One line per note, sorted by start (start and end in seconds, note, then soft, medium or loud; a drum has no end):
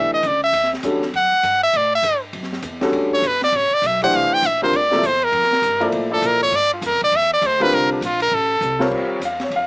0.00 0.11 B1 medium
0.00 0.21 E3 medium
0.00 0.21 A3 medium
0.00 0.21 D4 medium
0.00 0.21 G4 medium
0.00 0.22 D5 medium
0.00 0.11 E5 medium
0.12 0.29 D#5 medium
0.12 muted upright bass stroke soft
0.23 0.52 C#2 medium
0.23 hi-hat pedal medium
0.23 ride medium
0.27 0.43 D5 medium
0.44 0.71 E5 loud
0.53 0.82 D2 medium
0.53 ride medium
0.63 snare soft
0.73 snare soft
0.83 1.12 E2 medium
0.83 1.00 D3 medium
0.83 1.01 G3 medium
0.83 1.01 C#4 medium
0.83 1.01 F#4 medium
0.83 1.01 A4 medium
0.83 hi-hat pedal medium
0.83 ride medium
1.02 snare soft
1.13 1.31 F#2 medium
1.13 1.60 F#5 loud
1.13 ride medium
1.32 muted upright bass stroke soft
1.43 1.72 G2 medium
1.43 hi-hat pedal medium
1.43 ride medium
1.63 1.78 E5 loud
1.73 2.02 A2 medium
1.73 1.94 D5 medium
1.73 ride medium
1.95 2.21 E5 loud
2.03 2.32 G2 medium
2.03 hi-hat pedal medium
2.03 ride medium
2.33 2.62 F#2 medium
2.33 ride medium
2.43 snare soft
2.53 snare soft
2.63 2.92 E2 medium
2.63 hi-hat pedal medium
2.63 ride medium
2.81 3.21 D3 medium
2.81 3.21 G3 medium
2.81 3.21 C#4 medium
2.81 3.21 F#4 medium
2.81 3.21 A4 medium
2.81 snare medium
2.81 ride soft
2.92 3.22 D2 medium
2.92 ride medium
3.12 3.29 C#5 medium
3.12 kick medium
3.22 3.52 G1 medium
3.22 hi-hat pedal medium
3.22 ride medium
3.27 3.43 B4 medium
3.42 3.58 D5 loud
3.42 snare soft
3.42 ride soft
3.52 3.70 A1 medium
3.52 ride medium
3.56 3.75 C#5 medium
3.71 3.88 D5 loud
3.71 muted upright bass stroke soft
3.82 4.11 B1 medium
3.82 hi-hat pedal medium
3.82 ride medium
3.86 4.03 E5 medium
4.01 4.41 E3 medium
4.01 4.41 A3 medium
4.01 4.41 D4 medium
4.01 4.41 G4 medium
4.01 4.42 C5 medium
4.01 4.18 F#5 loud
4.01 ride medium
4.12 4.30 C2 medium
4.12 4.35 F5 loud
4.12 ride medium
4.31 4.48 G5 loud
4.31 muted upright bass stroke soft
4.42 4.72 A#1 medium
4.42 4.63 E5 medium
4.42 hi-hat pedal medium
4.42 ride medium
4.62 4.72 D3 medium
4.62 4.72 G3 medium
4.62 4.72 C4 medium
4.62 4.73 F4 medium
4.62 4.73 A#4 medium
4.62 4.78 C5 loud
4.73 5.01 D2 medium
4.73 5.08 D5 medium
4.73 ride medium
4.91 5.01 C3 medium
4.91 5.02 F3 medium
4.91 5.02 A#3 medium
4.91 5.02 E4 medium
4.91 5.02 A4 medium
4.91 snare soft
5.02 5.31 E2 medium
5.02 hi-hat pedal medium
5.02 ride medium
5.06 5.26 C5 medium
5.22 5.94 A#4 loud
5.22 ride medium
5.32 5.50 F2 medium
5.32 ride medium
5.43 snare soft
5.51 muted upright bass stroke soft
5.51 snare soft
5.62 5.91 G2 medium
5.62 hi-hat pedal medium
5.62 ride medium
5.80 6.09 F3 medium
5.80 6.09 A#3 medium
5.80 6.09 E4 medium
5.80 6.09 A4 medium
5.80 6.10 D5 medium
5.80 ride soft
5.92 6.21 A2 medium
5.92 ride medium
6.10 6.50 F3 medium
6.10 6.50 A#3 medium
6.10 6.50 E4 medium
6.10 6.50 A4 medium
6.10 6.28 A4 loud
6.10 6.50 D5 medium
6.22 6.51 A#2 medium
6.22 hi-hat pedal medium
6.22 ride medium
6.27 6.42 A#4 medium
6.41 6.57 C#5 loud
6.41 kick medium
6.41 ride medium
6.51 6.81 G2 medium
6.51 ride medium
6.56 6.72 D5 loud
6.73 6.87 F4 medium
6.81 6.93 F2 medium
6.81 hi-hat pedal medium
6.81 ride medium
6.86 7.03 A#4 medium
6.92 7.01 C2 medium
7.01 7.11 A#1 medium
7.01 7.18 D5 loud
7.01 ride soft
7.12 7.41 E2 medium
7.12 ride medium
7.16 7.33 E5 loud
7.33 7.48 D5 loud
7.42 7.70 D2 loud
7.42 hi-hat pedal medium
7.42 ride medium
7.46 7.64 C5 loud
7.60 7.99 D3 medium
7.60 7.99 G3 medium
7.60 8.00 C4 medium
7.60 8.00 F4 medium
7.60 8.00 A#4 medium
7.60 7.76 B4 loud
7.60 ride medium
7.71 8.00 C2 medium
7.71 7.92 A#4 loud
7.71 ride medium
7.92 8.06 D4 medium
8.01 8.30 A#1 loud
8.01 hi-hat pedal medium
8.01 ride medium
8.05 8.22 F4 medium
8.20 8.36 A#4 loud
8.20 ride medium
8.31 8.60 A1 medium
8.31 8.87 A4 medium
8.61 8.90 C2 loud
8.61 hi-hat pedal medium
8.79 9.19 G3 medium
8.79 9.19 C4 medium
8.79 9.19 F4 medium
8.79 9.19 A#4 medium
8.79 9.19 C#5 medium
8.79 snare medium
8.91 9.19 D#2 medium
8.91 kick medium
8.91 crash medium
9.20 9.50 E2 medium
9.20 hi-hat pedal medium
9.20 ride medium
9.25 9.41 F5 medium
9.40 9.53 C#5 medium
9.40 snare soft
9.40 ride soft
9.50 9.67 F2 medium
9.50 ride medium
9.56 9.67 F5 medium